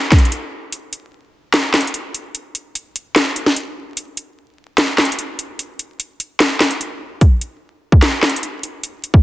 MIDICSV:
0, 0, Header, 1, 2, 480
1, 0, Start_track
1, 0, Tempo, 405405
1, 861, Time_signature, 4, 2, 24, 8
1, 10927, End_track
2, 0, Start_track
2, 0, Title_t, "Drums"
2, 139, Note_on_c, 9, 38, 91
2, 139, Note_on_c, 9, 39, 74
2, 140, Note_on_c, 9, 36, 104
2, 140, Note_on_c, 9, 42, 81
2, 219, Note_off_c, 9, 42, 0
2, 219, Note_on_c, 9, 42, 64
2, 257, Note_off_c, 9, 39, 0
2, 258, Note_off_c, 9, 36, 0
2, 258, Note_off_c, 9, 38, 0
2, 300, Note_off_c, 9, 42, 0
2, 300, Note_on_c, 9, 42, 46
2, 379, Note_off_c, 9, 42, 0
2, 379, Note_on_c, 9, 42, 72
2, 497, Note_off_c, 9, 42, 0
2, 858, Note_on_c, 9, 42, 85
2, 976, Note_off_c, 9, 42, 0
2, 1097, Note_on_c, 9, 42, 65
2, 1215, Note_off_c, 9, 42, 0
2, 1819, Note_on_c, 9, 38, 103
2, 1819, Note_on_c, 9, 39, 84
2, 1819, Note_on_c, 9, 42, 85
2, 1937, Note_off_c, 9, 38, 0
2, 1937, Note_off_c, 9, 39, 0
2, 1938, Note_off_c, 9, 42, 0
2, 2057, Note_on_c, 9, 39, 73
2, 2058, Note_on_c, 9, 38, 88
2, 2059, Note_on_c, 9, 42, 46
2, 2139, Note_off_c, 9, 42, 0
2, 2139, Note_on_c, 9, 42, 60
2, 2176, Note_off_c, 9, 38, 0
2, 2176, Note_off_c, 9, 39, 0
2, 2219, Note_off_c, 9, 42, 0
2, 2219, Note_on_c, 9, 42, 72
2, 2299, Note_off_c, 9, 42, 0
2, 2299, Note_on_c, 9, 42, 71
2, 2417, Note_off_c, 9, 42, 0
2, 2540, Note_on_c, 9, 42, 76
2, 2659, Note_off_c, 9, 42, 0
2, 2779, Note_on_c, 9, 42, 83
2, 2897, Note_off_c, 9, 42, 0
2, 3018, Note_on_c, 9, 42, 62
2, 3137, Note_off_c, 9, 42, 0
2, 3259, Note_on_c, 9, 42, 92
2, 3378, Note_off_c, 9, 42, 0
2, 3500, Note_on_c, 9, 42, 78
2, 3619, Note_off_c, 9, 42, 0
2, 3739, Note_on_c, 9, 39, 85
2, 3740, Note_on_c, 9, 38, 108
2, 3740, Note_on_c, 9, 42, 85
2, 3858, Note_off_c, 9, 38, 0
2, 3858, Note_off_c, 9, 39, 0
2, 3859, Note_off_c, 9, 42, 0
2, 3979, Note_on_c, 9, 42, 72
2, 4098, Note_off_c, 9, 42, 0
2, 4101, Note_on_c, 9, 38, 64
2, 4220, Note_off_c, 9, 38, 0
2, 4220, Note_on_c, 9, 42, 72
2, 4339, Note_off_c, 9, 42, 0
2, 4701, Note_on_c, 9, 42, 86
2, 4819, Note_off_c, 9, 42, 0
2, 4940, Note_on_c, 9, 42, 64
2, 5059, Note_off_c, 9, 42, 0
2, 5660, Note_on_c, 9, 38, 108
2, 5660, Note_on_c, 9, 39, 88
2, 5660, Note_on_c, 9, 42, 85
2, 5778, Note_off_c, 9, 38, 0
2, 5778, Note_off_c, 9, 39, 0
2, 5779, Note_off_c, 9, 42, 0
2, 5899, Note_on_c, 9, 38, 90
2, 5899, Note_on_c, 9, 39, 72
2, 5900, Note_on_c, 9, 42, 47
2, 5980, Note_off_c, 9, 42, 0
2, 5980, Note_on_c, 9, 42, 62
2, 6017, Note_off_c, 9, 39, 0
2, 6018, Note_off_c, 9, 38, 0
2, 6061, Note_off_c, 9, 42, 0
2, 6061, Note_on_c, 9, 42, 76
2, 6141, Note_off_c, 9, 42, 0
2, 6141, Note_on_c, 9, 42, 75
2, 6259, Note_off_c, 9, 42, 0
2, 6381, Note_on_c, 9, 42, 74
2, 6499, Note_off_c, 9, 42, 0
2, 6621, Note_on_c, 9, 42, 85
2, 6739, Note_off_c, 9, 42, 0
2, 6860, Note_on_c, 9, 42, 64
2, 6978, Note_off_c, 9, 42, 0
2, 7101, Note_on_c, 9, 42, 91
2, 7219, Note_off_c, 9, 42, 0
2, 7341, Note_on_c, 9, 42, 82
2, 7459, Note_off_c, 9, 42, 0
2, 7580, Note_on_c, 9, 38, 105
2, 7580, Note_on_c, 9, 39, 85
2, 7581, Note_on_c, 9, 42, 84
2, 7698, Note_off_c, 9, 39, 0
2, 7699, Note_off_c, 9, 38, 0
2, 7699, Note_off_c, 9, 42, 0
2, 7819, Note_on_c, 9, 38, 90
2, 7819, Note_on_c, 9, 39, 74
2, 7820, Note_on_c, 9, 42, 63
2, 7937, Note_off_c, 9, 39, 0
2, 7938, Note_off_c, 9, 38, 0
2, 7939, Note_off_c, 9, 42, 0
2, 7940, Note_on_c, 9, 42, 61
2, 8058, Note_off_c, 9, 42, 0
2, 8060, Note_on_c, 9, 42, 72
2, 8179, Note_off_c, 9, 42, 0
2, 8540, Note_on_c, 9, 36, 111
2, 8540, Note_on_c, 9, 42, 87
2, 8658, Note_off_c, 9, 36, 0
2, 8658, Note_off_c, 9, 42, 0
2, 8779, Note_on_c, 9, 42, 63
2, 8897, Note_off_c, 9, 42, 0
2, 9381, Note_on_c, 9, 36, 90
2, 9499, Note_off_c, 9, 36, 0
2, 9500, Note_on_c, 9, 39, 88
2, 9501, Note_on_c, 9, 38, 111
2, 9501, Note_on_c, 9, 42, 89
2, 9619, Note_off_c, 9, 38, 0
2, 9619, Note_off_c, 9, 39, 0
2, 9619, Note_off_c, 9, 42, 0
2, 9739, Note_on_c, 9, 39, 69
2, 9740, Note_on_c, 9, 38, 91
2, 9740, Note_on_c, 9, 42, 47
2, 9821, Note_off_c, 9, 42, 0
2, 9821, Note_on_c, 9, 42, 63
2, 9858, Note_off_c, 9, 38, 0
2, 9858, Note_off_c, 9, 39, 0
2, 9900, Note_off_c, 9, 42, 0
2, 9900, Note_on_c, 9, 42, 77
2, 9981, Note_off_c, 9, 42, 0
2, 9981, Note_on_c, 9, 42, 71
2, 10099, Note_off_c, 9, 42, 0
2, 10222, Note_on_c, 9, 42, 77
2, 10340, Note_off_c, 9, 42, 0
2, 10460, Note_on_c, 9, 42, 90
2, 10579, Note_off_c, 9, 42, 0
2, 10700, Note_on_c, 9, 42, 63
2, 10818, Note_off_c, 9, 42, 0
2, 10820, Note_on_c, 9, 36, 96
2, 10927, Note_off_c, 9, 36, 0
2, 10927, End_track
0, 0, End_of_file